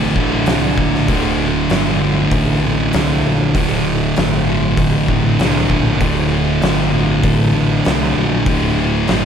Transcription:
Already playing: A1 D2 A2 D3
0.16 A2 D3, kick
0.20 D2
0.46 C2 D2 A2, snare, open hi-hat
0.50 D3
0.78 A#1, kick
0.95 snare
1.08 D1 D2, kick, open hi-hat
1.12 A2 D3
1.70 G1, snare, open hi-hat
2.00 D2 A2 D3
2.31 A1, kick, open hi-hat
2.62 D2 A2 D3
2.93 C2 D2 A2 D3, snare, open hi-hat
3.26 A#1
3.55 D1 D2 A2 D3, kick, open hi-hat
4.16 G1, snare, open hi-hat
4.47 D2 A2 D3
4.77 A1, kick, open hi-hat
5.08 D2 A2 D3, kick
5.38 C2 D2 A2 D3, snare, open hi-hat
5.70 A#1, kick
5.99 D1 D2 A2, kick, open hi-hat
6.03 D3
6.62 G1, snare, open hi-hat
6.92 D2 A2 D3
7.23 A1, kick, open hi-hat
7.54 A2 D3
7.59 D2
7.85 C2 D2 A2 D3, snare, open hi-hat
8.16 A#1
8.46 D1 D2 A2, kick, open hi-hat
8.50 D3
9.08 G1, snare, open hi-hat

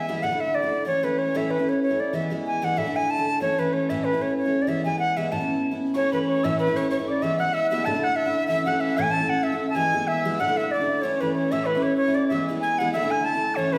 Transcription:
Already playing: E5
0.08 E3 G#3 B3 E4
0.23 D2 A2 D3 A3 D4 E4 F#5
0.31 D3 A3 D4 E4
0.40 E5
0.55 D5
0.62 D3 A3 D4 E4
0.85 E3 A3 C#4 E4 C#5
1.03 E3 A3 C#4 E4 B4
1.18 C#5
1.35 A2 E3 A3 C#4 E4 E5
1.51 B4
1.58 A3 C#4 E4
1.69 C#5
1.83 C#5
1.90 A3 C#4 E4
2.00 D5
2.13 E3 G#3 B3 E4 E5
2.30 E3 G#3 B3 E4
2.47 G#5
2.62 E3 G#3 B3 E4 F#5
2.76 D2 A2 D3 A3 D4 E4 E5
2.85 D3 A3 D4 E4
2.96 G#5
3.10 A5
3.17 D3 A3 D4 E4
3.40 E3 A3 C#4 E4 C#5
3.58 E3 A3 C#4 E4 B4
3.73 C#5
3.89 A2 E3 A3 C#4 E4 E5
4.04 B4
4.13 A3 C#4 E4
4.22 C#5
4.38 C#5
4.45 A3 C#4 E4
4.62 D5
4.67 E3 G#3 B3 E4 E5
4.85 E3 G#3 B3 E4 G#5
4.99 F#5
5.16 E3 G#3 B3 E4 E5
5.32 A2 E3 B3 C#4 E4 A5
5.39 B3 C#4 E4
5.71 B3 C#4 E4
5.94 E3 A3 C#4 E4 C#5 C#6
6.12 E3 A3 C#4 E4 B4 B5
6.24 C#5 B5 C#6
6.43 A2 E3 A3 C#4 E4 E5 E6
6.59 B4 B5
6.67 A3 C#4 E4
6.76 C#5 C#6
6.90 C#5 C#6
6.99 A3 C#4 E4
7.08 D5 D6
7.22 E3 G#3 B3 E4 E5 E6
7.39 E3 G#3 B3 E4 F#5 F#6
7.53 E5 E6
7.70 E3 G#3 B3 E4 E5 E6
7.85 D2 A2 D3 A3 D4 E4 A5 A6
7.94 D3 A3 D4 E4
8.02 F#5 F#6
8.16 E5 E6
8.26 D3 A3 D4 E4
8.47 E3 A3 C#4 E4 E5 E6
8.65 E3 A3 C#4 E4 F#5 F#6
8.80 E5 E6
8.97 A2 E3 A3 C#4 E4 G#5 G#6
9.11 A5 A6
9.20 A3 C#4 E4
9.29 F#5
9.43 E5 E6
9.52 A3 C#4 E4
9.70 A5
9.75 E3 G#3 B3 E4 G#5 G#6
9.93 E3 G#3 B3 E4
10.08 E5 E6
10.25 E3 G#3 B3 E4
10.39 D2 A2 D3 A3 D4 E4 F#5 F#6
10.47 D3 A3 D4 E4
10.57 E5 E6
10.71 D5 D6
10.79 D3 A3 D4 E4
11.02 E3 A3 C#4 E4 C#5 C#6
11.21 E3 A3 C#4 E4 B4 B5
11.35 C#5 C#6
11.51 A2 E3 A3 C#4 E4 E5 E6
11.64 B4 B5 C#6
11.75 A3 C#4 E4
11.81 C#5 D6
11.86 C#6
11.97 C#5 C#6
12.07 A3 C#4 E4
12.15 D5 D6
12.28 E3 G#3 E5
12.32 B3 E4 E6
12.48 E3 G#3 B3 E4
12.60 G#5 G#6
12.78 E3 G#3 B3 E4 F#5
12.93 D2 A2 D3 A3 D4 E4 E5 E6
13.02 D3 A3 D4 E4
13.10 G#5 G#6
13.24 A5 A6
13.34 D3 A3 D4 E4
13.54 E3 A3 C#5 C#6 D6
13.58 C#4 E4
13.73 E3 B4

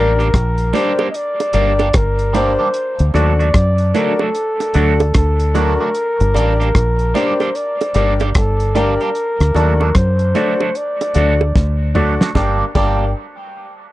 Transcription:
Already playing: A1 G3 A#3 D4 G4 A#4 D5
0.19 G3 A#3 D4 G4, closed hi-hat
0.34 A#1, kick, cross-stick, closed hi-hat
0.58 closed hi-hat
0.73 G3 A#3 D4 G4 A#4 C5 D5, closed hi-hat, low bongo
0.99 G3 A#3 D4 G4, high bongo
1.10 D#5
1.14 D5, closed hi-hat
1.40 closed hi-hat, high bongo
1.53 G1 G3 A#3 D4 G4 A#4 D5, closed hi-hat, high bongo
1.79 G3 A#3 D4 G4, closed hi-hat, high bongo
1.93 G1 A#4, kick, cross-stick, closed hi-hat
2.19 closed hi-hat
2.33 G3 A#3 D4 G4 A#4 C5 D5, cross-stick, closed hi-hat, low bongo
2.59 G3 A#3 D4 G4
2.74 closed hi-hat
2.99 D2, closed hi-hat
3.14 D#2 F#3 A3 D4 F#4 A4 D5, closed hi-hat, high bongo
3.39 F#3 A3 D4 F#4 D5, closed hi-hat
3.54 F#2, kick, cross-stick, closed hi-hat
3.78 closed hi-hat
3.94 F#3 A3 D4 F#4 A4 A#4 D5, closed hi-hat, low bongo
4.19 F#3 A3 D4 F#4 A4, high bongo
4.35 closed hi-hat
4.60 closed hi-hat, high bongo
4.74 D2 F#3 A3 D4 F#4 A4 D5, closed hi-hat, high bongo
5.00 closed hi-hat, high bongo
5.14 D2 A4, kick, cross-stick, closed hi-hat
5.40 closed hi-hat
5.54 F#3 A3 D4 F#4 A4 A#4 D5, closed hi-hat, low bongo
5.80 F#3 A3 D4 F#4
5.95 closed hi-hat
6.20 G1, closed hi-hat
6.34 A1 G3 A#3 D4 G4 A#4 D5, closed hi-hat, high bongo
6.60 G3 A#3 D4 G4, closed hi-hat
6.75 A#1, kick, cross-stick, closed hi-hat
6.99 closed hi-hat
7.14 G3 A#3 D4 G4 A#4 C5 D5, closed hi-hat, low bongo
7.40 G3 A#3 D4 G4, closed hi-hat, high bongo
7.55 D5, closed hi-hat
7.81 closed hi-hat, high bongo
7.94 G1 G3 A#3 D4 G4 A#4 D5, closed hi-hat, high bongo
8.20 G3 A#3 D4 G4, closed hi-hat, high bongo
8.35 G1 A4, kick, cross-stick, closed hi-hat
8.60 closed hi-hat
8.75 G3 A#3 D4 G4 A#4 D5, cross-stick, closed hi-hat, low bongo
9.01 G3 A#3 D4 G4, closed hi-hat
9.15 closed hi-hat
9.40 D2, cross-stick, closed hi-hat
9.54 D#2 F#3 A3 D4 F#4 A4 D5, closed hi-hat, high bongo
9.80 F#3 A3 D4 F#4, high bongo
9.95 F#2 C5, kick, cross-stick, closed hi-hat
10.19 closed hi-hat
10.34 F#3 A3 D4 F#4 A4 D5, closed hi-hat, low bongo
10.60 F#3 A3 D4 F#4, high bongo
10.75 D5, closed hi-hat
11.01 closed hi-hat, high bongo
11.14 D2 F#3 A3 D4 F#4 A4 D5, closed hi-hat, high bongo
11.41 high bongo
11.55 D2, kick, snare
11.94 F#3 A3 D4 F#4 A4 D5, mid tom, low bongo
12.21 F#3 A3 D4 F#4, snare
12.35 G1 G3 A#3 D4 G4 A#4 D5 G5, kick, snare, high bongo
12.75 G1 G3 A#3 D4 G4 A#4 D5 G5, kick, crash, high bongo

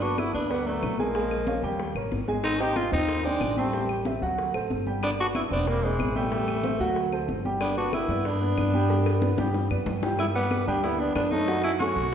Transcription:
Already playing: G1
0.02 B3 D4 F#4 B4 D5, high bongo, high conga
0.18 B3 E4, high bongo, high conga, claves
0.34 D2 B3 D4 B4 D5, high bongo, high conga
0.50 G3 B3, high bongo, high conga
0.66 F#3 A3 B3 B4 D5, high bongo, high conga
0.83 A#1, high bongo, low bongo, high conga, claves
0.99 F3 G#3 A#3 G#4 G#5, high conga
1.15 G#3 G#4 G#5, high bongo, high conga
1.31 high bongo, high conga, claves
1.47 C#4 C#5 F5, high bongo, high conga
1.63 D#2 G3 G4 G5, high bongo, high conga
1.80 high bongo, high conga
1.95 A1 A#3 A#4 C#5, high bongo, high conga, claves
2.12 G#1, high bongo, low bongo, high conga
2.28 G#3 G#4 G#5, high conga
2.44 C4 D#4, high bongo, high conga, claves
2.60 C4 D#4 G4 C5 D#5, high bongo, high conga
2.76 C4 F4, high bongo, high conga, claves
2.92 D#2 C4 D#4 C5 D#5, high bongo, high conga
3.08 high bongo, high conga
3.24 G#3 C4 D4 C5 G5, high bongo, high conga
3.40 A1, high bongo, low bongo, high conga, claves
3.57 G3 A3 C4 G4 G5, high conga
3.73 G3 G4 G5, high bongo, high conga
3.89 high bongo, high conga, claves
4.05 C4 C5 E5, high bongo, high conga
4.21 D2 F#3 F#4 F#5, high bongo, high conga
4.38 high bongo, high conga
4.54 A1 A3 A4 C5, high bongo, high conga, claves
4.70 G1, high bongo, low bongo, high conga
4.86 G3 G4 G5, high conga
5.03 B3 D4, high bongo, high conga, claves
5.19 B3 D4 F#4 B4 D5, high bongo, high conga
5.35 B3 E4, high bongo, high conga, claves
5.51 E1 B3 C4 D4 C5 D5, high bongo, high conga
5.67 G3 A#3, high bongo, high conga
5.83 E3 G#3 C4 C5 D5, high bongo, high conga
5.99 A1, high bongo, low bongo, high conga, claves
6.15 E3 G3 A3 G4 G5, high conga
6.31 G3 G4 G5, high bongo, high conga
6.48 high bongo, high conga, claves
6.64 C4 C5 E5, high bongo, high conga
6.80 D2 F#3 F#4 F#5, high bongo, high conga
6.96 high bongo, high conga
7.12 A3 A4 C5, high bongo, high conga, claves
7.28 G1, high bongo, low bongo, high conga
7.45 G3 G4 G5, high conga
7.61 B3 D4, high bongo, high conga, claves
7.77 B3 D4 F#4 B4 D5, high bongo, high conga
7.93 B3 E4, high bongo, high conga, claves
8.08 G2 B3 B4 D5, high bongo, high conga
8.25 B3 D4, high bongo, high conga
8.42 B3 B4 D5, high bongo, high conga
8.57 G2, high bongo, low bongo, high conga, claves
8.74 G3 G4 G5, high conga
8.90 G3 G4 G5, high bongo, high conga
9.06 high bongo, high conga, claves
9.22 B3 B4 D5, low bongo, high conga
9.38 G2 G3 G4 G5, low bongo, high conga
9.54 low bongo
9.70 F#2 B3 B4 D5, claves
9.86 G2, low bongo, low conga
10.02 G3 G4 G5, low bongo, low conga
10.18 B3 E4, high bongo, high conga, claves
10.35 G3 B3 B4 D5, high bongo, high conga
10.51 high bongo, high conga, claves
10.67 D2 G3 B3 D4 G4 G5, high bongo, high conga
10.83 B3 E4 B4 D5, high bongo, high conga
10.99 B3 D4 B4 D5, high bongo, high conga
11.15 F#2 B3 D4, high bongo, low bongo, claves
11.31 A3 D#4 A4 C#5, high conga
11.48 F#3 F#4 F#5, high bongo, high conga
11.64 C#4 E4, high bongo, high conga, claves
11.80 A3 C#4 F#4 A4 C#5, high bongo, high conga
11.96 B1, high bongo, high conga

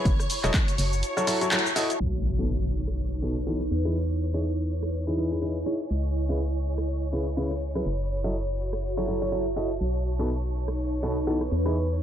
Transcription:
Already playing: E4 C#5 B5 C#6
0.05 F#1 F#4, kick, closed hi-hat, cabasa
0.20 cross-stick, cabasa
0.24 A5
0.30 open hi-hat, cabasa
0.43 E1 F#3 E4 F#4 A4 D#5, cross-stick, clap, closed hi-hat, cabasa
0.54 kick, clap, closed hi-hat, cabasa
0.64 E5
0.68 closed hi-hat, cabasa
0.78 F#1, open hi-hat, cabasa
0.93 cabasa
1.03 closed hi-hat, cabasa
1.17 F#3 E4 F#4 A4 C#5, cabasa
1.27 F#3 E4 F#4 A4 C#5, open hi-hat, cabasa
1.41 F#3 E4 F#4 A4 C#5, closed hi-hat, cabasa
1.51 F#3 E4 F#4 A4 C#5, clap, closed hi-hat, cabasa
1.59 closed hi-hat
1.66 cabasa
1.76 E4 F#4 A4 D#5, open hi-hat, cabasa
1.90 closed hi-hat, cabasa
2.00 B1 D#4 C#5 C#6, closed hi-hat, impact
2.36 B2 B3 D#4 F#4 A4 B4, closed hi-hat
2.49 closed hi-hat
2.63 closed hi-hat
2.74 closed hi-hat
2.88 cross-stick
2.98 closed hi-hat
3.22 B2 B3 D#4 F#4 A4
3.36 closed hi-hat
3.47 E3 B3 D#4 F#4 A4, closed hi-hat
3.61 cross-stick
3.71 E2 E4, closed hi-hat
3.85 E3 D#4 E4 G#4 B4, cross-stick, closed hi-hat
3.95 closed hi-hat
4.20 closed hi-hat
4.34 E3 D#4 E4 G#4 C#5, closed hi-hat
4.40 D#5
4.44 closed hi-hat
4.58 closed hi-hat
4.69 G#5, closed hi-hat
4.83 cross-stick
4.93 closed hi-hat
5.07 E3 D#4 E4 G#4 B4
5.17 E3 D#4 E4 G#4 B4
5.31 E3 D#4 E4 G#4 B4, closed hi-hat
5.42 E3 D#4 E4 G#4 B4, closed hi-hat
5.66 D#4 E4 G#4 C#5, closed hi-hat
5.80 closed hi-hat
5.91 C#2, closed hi-hat
6.15 closed hi-hat
6.29 C#3 C#4 E4 G#4 B4, closed hi-hat
6.39 C#5, closed hi-hat
6.53 closed hi-hat
6.64 closed hi-hat
6.78 B5, cross-stick
6.88 closed hi-hat
7.12 C#3 C#4 E4 G#4 B4
7.27 closed hi-hat
7.37 C#3 C#4 E4 G#4 B4, closed hi-hat
7.51 cross-stick
7.61 closed hi-hat
7.75 F#3 C#4 E4 G#4 B4, cross-stick, closed hi-hat
7.86 F#1 F#4, closed hi-hat
8.10 closed hi-hat
8.24 F#3 E4 F#4 A4 D#5, closed hi-hat
8.29 E5
8.34 closed hi-hat
8.49 closed hi-hat
8.59 closed hi-hat
8.73 A5, cross-stick
8.83 closed hi-hat
8.97 F#3 E4 F#4 A4 C#5
9.08 F#3 E4 F#4 A4 C#5, closed hi-hat
9.22 F#3 E4 F#4 A4 C#5, closed hi-hat
9.32 F#3 E4 F#4 A4 C#5, closed hi-hat
9.56 E4 F#4 A4 D#5, closed hi-hat
9.70 closed hi-hat
9.81 B1 D#4 C#5 C#6, closed hi-hat
10.05 closed hi-hat
10.19 B2 B3 D#4 F#4 A4, closed hi-hat
10.29 closed hi-hat
10.35 B4
10.44 closed hi-hat
10.54 closed hi-hat
10.68 cross-stick
10.78 closed hi-hat
11.03 B2 B3 D#4 F#4 A4
11.17 closed hi-hat
11.27 E3 B3 D#4 F#4 A4, closed hi-hat
11.41 cross-stick
11.51 E2 E4, closed hi-hat
11.66 E3 D#4 E4 G#4 B4, cross-stick, closed hi-hat
11.76 closed hi-hat
11.96 D#5

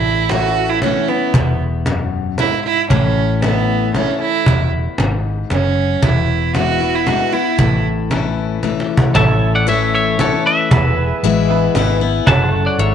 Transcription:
Already playing: A1 A2 E4
0.29 E3 A3 C#4 E4 F#4, cajon slap
0.69 E4
0.82 E3 A3 C#4 E4, cajon slap
1.08 B3 C#4 E4, cajon slap
1.34 E1 E2, cajon bass
1.86 F#2, cajon slap
2.38 G#2 E4, cajon slap
2.64 E4, cajon slap
2.90 A1 A2 C#4, cajon bass
3.42 E3 A3 B3 C#4 E4, cajon slap
3.94 E3 A3 C#4 E4, cajon slap
4.20 E4, cajon slap
4.46 E1 E2, cajon bass
4.98 G#1 G#2, cajon slap
5.50 F#1 F#2 C#4, cajon slap
5.77 cajon slap
6.03 E1 E2 E4, cajon bass
6.54 E3 G#3 B3 E4 F#4, cajon slap
6.81 B3 E4
6.95 E4
7.06 E3 G#3 B3 E4 F#4, cajon slap
7.32 B3 E4, cajon slap
7.59 A1 A2, cajon bass
8.11 E3 A3 C#4 E4, cajon slap
8.63 E3 A3 C#4 E4, cajon slap
8.80 cajon slap
8.89 cajon slap
8.97 cajon bass
9.13 A1 A2 C#4 E4 A4 C#5 E5 A5, cajon bass
9.55 D5 F#5
9.67 E3 A3 C#4 E4 C#5 E5
9.94 C#5 E5
10.19 E3 A3 C#4 E4 A4 C#5, cajon slap
10.46 B4 E5
10.71 E1 E2 B3 E4 G#4 A4 B4 E5, cajon bass
10.91 G#4
11.23 A1 E3 G#3 B3 E4, cajon slap
11.49 B3 E4 G#4 B4
11.75 G#1 E3 G#3 B3 E4, cajon slap
12.01 B3 E4
12.25 F#1 F#2 C#4 F#4 G#4 A4 B4 C#5 F#5 A5, cajon bass
12.30 F#5
12.47 A4
12.54 C#5
12.66 D5 F#5
12.78 G#1 G#2 C#5 E5, cajon slap

